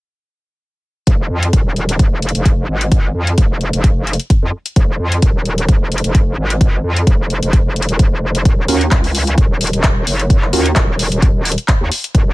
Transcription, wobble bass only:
1.07 F1
1.30 F2
1.53 D#1
1.99 F1
2.35 F1
2.68 G#1
3.15 F2
3.38 F1
3.73 F1
4.43 F2
4.76 F1
4.99 F2
5.22 D#1
5.69 F1
6.04 F1
6.38 G#1
6.84 F2
7.07 F1
7.42 F1
7.66 F1
7.89 D#1
7.99 F1
8.45 D#1
8.68 D#2
8.91 C#2
9.38 D#1
9.73 D#1
10.07 F#1
10.53 D#2
10.76 D#1
11.12 D#1
11.81 D#2
12.15 D#1

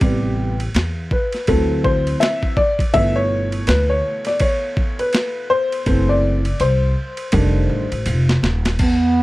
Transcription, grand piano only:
Already playing: G4
0.01 C3 G3 B3
1.12 B4
1.48 E3 F#3 C4 A4
1.84 C5
2.20 E5
2.57 D5
2.93 B2 E3 A3 E5
3.16 C#5
3.68 B4
3.90 C#5
4.27 D5
4.41 C#5
4.99 B4
5.50 C5
5.86 E3 A3 C4
6.09 D5
6.61 C5
7.32 D#3 G3 A3 D4

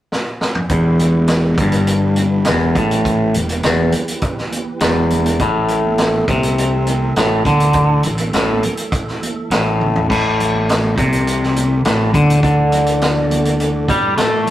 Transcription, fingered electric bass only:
0.69 E1
1.57 G1
2.49 E1
2.76 A1
3.35 E1
3.64 E1
4.82 E1
5.40 A1
6.28 C2
7.17 A1
7.45 D2
8.05 A1
8.34 A1
9.50 A1
10.11 A1
10.98 C2
11.85 A1
12.14 D2
12.43 D2
13.89 G2
14.19 A2

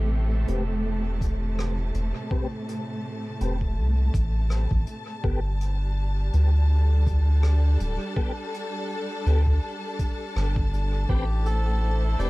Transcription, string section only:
Already playing: A2 C3 A3 G4
0.82 A5
5.24 G3
5.65 D4
6.76 A4
11.09 A3
11.25 E4
11.38 C5

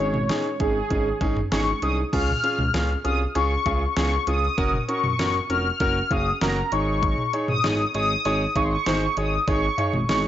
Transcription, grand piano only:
0.00 C#4 D#4 G#4
0.29 C#4 D#4 G#4
0.60 C#4 D#4 G#4
0.90 C#4 D#4 G#4
1.21 C#4 D#4 G#4
1.52 C#4 D#4 G#4
1.82 C#4 D#4 G#4
2.13 C#4 F4 G#4
2.43 C#4 F4 G#4
2.74 C#4 F4 G#4
3.04 C#4 F4 G#4
3.35 C#4 F4 G#4
3.66 C#4 F4 G#4
3.96 C#4 F4 G#4
4.27 C#4 F4 G#4
4.58 C#4 F#4 A#4
4.88 C#4 F#4 A#4
5.19 C#4 F#4 A#4
5.50 C#4 F#4 A#4
5.80 C#4 F#4 A#4
6.11 C#4 F#4 G#4
6.41 C#4 F#4 A#4
6.72 D#4 G#4 C#5
7.33 D#4 G#4 C#5
7.64 D#4 G#4 C#5
7.95 D#4 G#4 C#5
8.25 D#4 G#4 C#5
8.56 D#4 G#4 C#5
8.87 D#4 G#4 C5
9.17 D#4 G#4 C#5
9.48 D#4 G#4 C#5
9.79 D#4 G#4 C#5
10.09 D#4 G#4 C#5

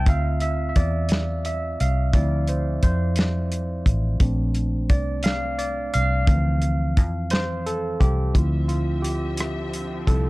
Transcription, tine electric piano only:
0.07 C4 F4 E5 F5
0.42 E5
0.69 E5
0.76 D5
1.46 E5
1.81 F5
2.14 F3 C4 E4 D5
2.49 C5
2.83 C5
4.20 A3 C4 D4
4.90 D5
5.24 F5
5.58 D5
5.94 F5
6.27 E3 F3 C4
7.31 C5
7.66 A4
8.00 G4
8.34 F3 C4 E4 F4
8.68 F4
9.02 G4
10.07 F3 C4 E4 A4

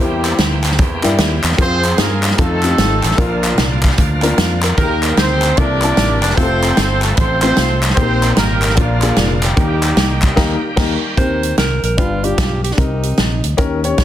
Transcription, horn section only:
0.00 G3 A#3 C4 G4
1.59 C4 F4 G#4 C5
2.00 A#3 F4 A#4
2.40 A3 C4 D#4 A4
3.19 F3 A#3 D4 F4
4.77 A#3 D#4 G4 A#4
5.17 C4 D#4 G4 C5
5.57 D4 G4 A#4 D5
6.21 D4 D5
6.36 C4 F4 A4 C5
7.02 A3 A4
7.16 C4 F4 A4 C5
7.41 C4 F4 A4 C5
7.95 C4 D#4 G4 C5
8.35 A#3 D#4 G4 A#4
8.76 F3 A#3 D4 F4
9.42 G3 A#3 D#4 G4

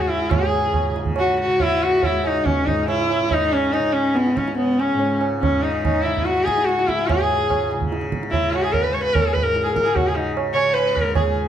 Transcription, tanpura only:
Already playing: C#2 G#2 C#3
0.32 G#2
0.90 C#3
1.48 C#3
2.09 C#2
2.66 G#2
3.20 C#3
3.79 C#3
4.37 C#2
4.95 G#2
5.49 C#3
6.07 C#3
6.62 C#2
7.20 G#2
7.75 C#3
8.32 C#3
8.89 C#2
9.42 G#2
9.98 C#3
10.54 C#3
11.03 C#2

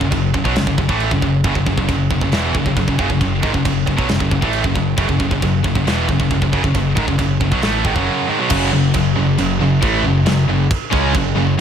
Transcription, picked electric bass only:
0.01 F#1
0.12 F#1
0.35 F#1
0.45 B1
0.56 F#1
0.67 F#1
0.78 F#1
0.90 A1
1.12 F#1
1.23 F#1
1.44 F#1
1.56 F#1
1.67 F#1
1.78 F#1
1.89 F#1
2.11 F#1
2.22 F#1
2.32 E1
2.55 F#1
2.66 F#1
2.76 F#1
2.88 F#1
2.99 F#1
3.10 F#1
3.21 F#1
3.44 G#1
3.54 F#1
3.65 F#1
3.88 F#1
3.99 B1
4.10 F#1
4.21 F#1
4.31 F#1
4.43 A1
4.64 F#1
4.76 F#1
4.98 F#1
5.09 F#1
5.20 F#1
5.31 F#1
5.43 F#1
5.65 F#1
5.76 F#1
5.87 E1
6.09 F#1
6.20 F#1
6.31 F#1
6.42 F#1
6.53 F#1
6.64 F#1
6.75 F#1
6.97 G#1
7.08 F#1
7.19 F#1
7.41 F#1
7.52 B1
7.63 A1
7.85 G#1
7.96 F#1
8.51 F#1
8.73 F#1
8.95 F#1
9.17 F#1
9.39 F#1
9.61 F#1
9.82 A1
10.03 F#1
10.26 F#1
10.48 F#1
10.93 C#2
11.15 F#1
11.35 F#1

